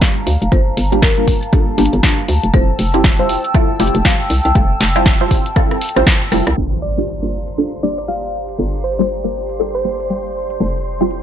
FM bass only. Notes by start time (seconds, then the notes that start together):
0.27 D2
0.42 F1
0.52 G1
0.77 G1
1.78 G1
1.93 G1
2.28 D2
2.44 F1
2.54 F1
2.79 F1
3.80 F1
3.95 F1
4.30 C2
4.45 C2
4.55 F1
4.81 F1
5.96 A1
6.32 F1
6.47 C2
6.57 G1
8.59 G1
10.60 F1